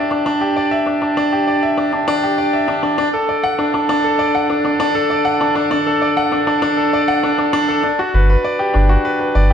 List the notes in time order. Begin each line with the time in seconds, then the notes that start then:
Already playing: D4 G4 D5 E5
0.11 D4
0.26 D4
0.41 G4
0.56 D5
0.71 E5
0.86 D4
1.02 D4
1.17 D4
1.32 G4
1.48 D5
1.63 E5
1.78 D4
1.93 D4
2.08 D4
2.23 G4
2.38 D5
2.53 E5
2.68 D4
2.83 D4
2.98 D4
3.14 A4
3.29 D5
3.44 F#5
3.59 D4
3.74 D4
3.89 D4
4.04 A4
4.19 D5
4.35 F#5
4.50 D4
4.65 D4
4.80 D4
4.95 A4
5.10 D5
5.25 F#5
5.41 D4
5.55 D4
5.71 D4
5.87 A4
6.02 D5
6.17 F#5
6.32 D4
6.47 D4
6.62 D4
6.77 A4
6.93 D5
7.08 F#5
7.23 D4
7.38 D4
7.53 D4
7.68 A4
7.84 D4
7.99 F#4
8.14 G1 B4
8.30 B4
8.45 D5
8.59 G4
8.74 G1 D4
8.89 F#4
9.05 B4
9.20 B4
9.35 G1 D5